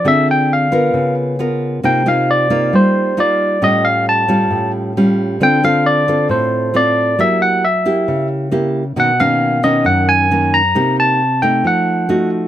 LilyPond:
<<
  \new Staff \with { instrumentName = "Tine electric piano" } { \time 4/4 \key c \dorian \tempo 4 = 134 e''8 g''8 f''4. r4. | g''8 f''8 d''4 c''4 d''4 | ees''8 eis''8 a''4. r4. | g''8 f''8 d''4 c''4 d''4 |
fes''8 ges''8 fes''4. r4. | fis''8 f''4 dis''8 fis''8 aes''4 ais''8~ | ais''8 a''4 g''8 ges''4. r8 | }
  \new Staff \with { instrumentName = "Nylon-string guitar" } { \time 4/4 \key c \dorian << { <c' f' aes'>4. <ces' f' bes'>4. <ces' f' bes'>4 | <bes ees' f'>8 <bes ees' f'>4 <bes ees' f'>4. <bes ees' f'>4 | <g cis' eis'>4. <g cis' eis'>4. <g cis' eis'>4 | <c' f' a'>8 <c' f' a'>4 <c' f' a'>4. <c' f' a'>4 |
<bes fes' g'>4 r8 <bes fes' g'>4. <bes fes' g'>8 r8 | <dis ais cis'>8 <dis ais cis'>4 <dis ais cis'>4. <dis ais cis'>8 r8 | <bes ees' g'>4 r8 <a ees'>4. <a ees' ges'>4 | } \\ { d2 des2 | c2 g2 | a,2 a,2 | d2 a,2 |
ges2 des2 | b,2 fis,2 | c2 f2 | } >> }
>>